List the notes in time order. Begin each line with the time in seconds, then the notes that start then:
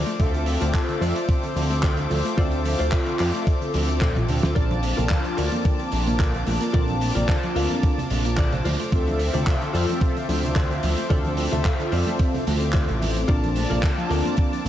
Already playing: F4 A4 C5 D5 D6
0.07 A3, closed hi-hat, shaker
0.19 D2 C3 C4 F4 A4 E5, kick, closed hi-hat, shaker
0.34 D3, closed hi-hat, shaker
0.46 F3, open hi-hat, shaker
0.61 D2 A3 F4 A4 C5 D5, closed hi-hat, shaker
0.74 C3, kick, clap, closed hi-hat, shaker
0.89 D3, closed hi-hat, shaker
1.01 F2 F3 F4 A4 C5 D5, open hi-hat, shaker
1.16 A3, closed hi-hat, shaker
1.28 C3, kick, closed hi-hat, shaker
1.43 D3, closed hi-hat, shaker
1.55 D2 F3 C4 F4 A4 E5, open hi-hat, shaker
1.70 A3, closed hi-hat, shaker
1.82 C3 F4 A4 C5 D5, kick, clap, closed hi-hat, shaker
1.97 D3, closed hi-hat, shaker
2.10 D2 F3, muted clean electric guitar stroke, open hi-hat, shaker
2.25 A3, closed hi-hat, shaker
2.37 D2 C3 C4 F4 A4 C5 D5 E5, kick, closed hi-hat, shaker
2.52 D3, closed hi-hat, shaker
2.65 F3, open hi-hat, shaker
2.79 D2 A3 F4 A4 C5 D5, closed hi-hat, shaker
2.92 C3, kick, clap, closed hi-hat, shaker
3.06 D3, closed hi-hat, shaker
3.19 F2 F3 F4 A4 C5 D5, clap, open hi-hat, shaker
3.34 A3, closed hi-hat, shaker
3.47 C3, kick, closed hi-hat, shaker
3.61 D3, closed hi-hat, shaker
3.73 D2 F3 C4 F4 A4 E5, open hi-hat, shaker
3.88 A3, closed hi-hat, shaker
4.01 F3 F4 A4 C5 D5, kick, clap, closed hi-hat, high tom, shaker
4.16 A1 F3, closed hi-hat, high tom, shaker
4.28 D2 C3, muted clean electric guitar stroke, open hi-hat, shaker
4.43 D2 C4, snare, shaker
4.55 A#1 D3 A#3 C4 D4 F4 A4 A#4 D5 A5, kick, closed hi-hat, shaker
4.71 F3, closed hi-hat, high conga, shaker
4.83 A3, open hi-hat, shaker
4.97 A#1 A#3 F4 A4 A#4 F5, closed hi-hat, low conga, shaker
5.09 D3, kick, clap, closed hi-hat, high conga, shaker
5.24 F3, closed hi-hat, shaker
5.37 D2 A3 F4 A4 A#4 D5, open hi-hat, shaker
5.52 A#3, closed hi-hat, high conga, shaker
5.65 D3, kick, closed hi-hat, shaker
5.79 F3, closed hi-hat, shaker
5.92 A#1 A3 C4 D4 F4 A5, open hi-hat, high conga, shaker
6.07 A#3, closed hi-hat, low conga, shaker
6.19 D3 F4 A4 A#4 D5, kick, clap, closed hi-hat, shaker
6.34 F3, closed hi-hat, shaker
6.46 A#1 A3, muted clean electric guitar stroke, open hi-hat, high conga, shaker
6.61 A#3, closed hi-hat, shaker
6.73 A#1 D3 C4 D4 F4 A4 A#4 D5 A5, kick, closed hi-hat, shaker
6.88 F3, closed hi-hat, high conga, shaker
7.01 A3, open hi-hat, shaker
7.15 A#1 A#3 F4 A4 A#4 D5, closed hi-hat, low conga, shaker
7.28 D3, kick, clap, closed hi-hat, high conga, shaker
7.43 F3, closed hi-hat, shaker
7.56 D2 A3 F4 A4 A#4 F5, open hi-hat, shaker
7.70 A#3, closed hi-hat, high conga, shaker
7.83 D3, kick, closed hi-hat, shaker
7.98 F3, closed hi-hat, low conga, shaker
8.10 A#1 A3 C4 D4 F4 A5, open hi-hat, high conga, shaker
8.25 A#3, closed hi-hat, shaker
8.37 D3 F4 A4 A#4 D5, kick, clap, closed hi-hat, shaker
8.52 F3, closed hi-hat, low conga, shaker
8.64 D2 F3 F4 A4 C5 D5, open hi-hat, high conga, shaker
8.80 A3, closed hi-hat, shaker
8.92 D2 C3 C4 F4 A4 E5, kick, closed hi-hat, shaker
9.07 D3, closed hi-hat, high conga, shaker
9.19 F3, open hi-hat, shaker
9.33 D2 A3 F4 A4 C5 D5, closed hi-hat, low conga, shaker
9.47 C3, kick, clap, closed hi-hat, high conga, shaker
9.61 D3, closed hi-hat, shaker
9.73 F2 F3 F4 A4 C5 D5, open hi-hat, shaker
9.89 A3, closed hi-hat, high conga, shaker
10.01 C3, kick, closed hi-hat, shaker
10.16 D3, closed hi-hat, shaker
10.28 D2 F3 C4 F4 A4 E5, open hi-hat, high conga, shaker
10.43 A3, closed hi-hat, low conga, shaker
10.55 C3 F4 A4 C5 D5, kick, clap, closed hi-hat, shaker
10.71 D3, closed hi-hat, shaker
10.83 D2 F3, muted clean electric guitar stroke, open hi-hat, high conga, shaker
10.98 A3, closed hi-hat, shaker
11.10 D2 C3 C4 F4 A4 C5 D5 E5, kick, closed hi-hat, shaker
11.24 D3, closed hi-hat, high conga, shaker
11.37 F3, open hi-hat, shaker
11.52 D2 A3 F4 A4 C5 E5, closed hi-hat, low conga, shaker
11.65 C3, kick, clap, closed hi-hat, high conga, shaker
11.80 D3, closed hi-hat, shaker
11.92 F2 F3 F4 A4 C5 D5, open hi-hat, shaker
12.06 A3, closed hi-hat, high conga, shaker
12.19 C3, kick, closed hi-hat, shaker
12.34 D3, closed hi-hat, low conga, shaker
12.46 D2 A3 C4 F4 A4 E5, open hi-hat, high conga, shaker
12.61 C4, closed hi-hat, shaker
12.73 C3 F4 A4 C5 D5, kick, clap, closed hi-hat, shaker
12.89 A1 A3, closed hi-hat, low conga, shaker
13.01 A3, muted clean electric guitar stroke, open hi-hat, high conga, shaker
13.16 C4, closed hi-hat, shaker
13.28 A#1 D3 A#3 C4 D4 F4 A4 A#4 D5 A5 D6, kick, closed hi-hat, shaker
13.43 F3, closed hi-hat, high conga, shaker
13.56 A3, open hi-hat, shaker
13.70 A#1 A#3 F4 A4 A#4 D5, closed hi-hat, low conga, shaker
13.83 D3, kick, clap, closed hi-hat, high conga, shaker
13.98 F3, closed hi-hat, shaker
14.10 D2 A3 F4 A4 A#4 D5, open hi-hat, shaker
14.25 A#3, closed hi-hat, high conga, shaker
14.37 D3, kick, closed hi-hat, shaker
14.53 F3, closed hi-hat, shaker
14.65 A#1 A3 C4 D4, high conga